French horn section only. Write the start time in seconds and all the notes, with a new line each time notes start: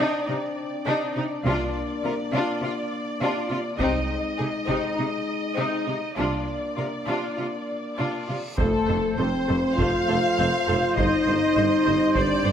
Already playing: C4 D4
1.45 A#3
3.81 G#3
6.16 A#3 D4
8.59 A3
9.18 C4
9.76 F4
10.96 D#4
12.18 D4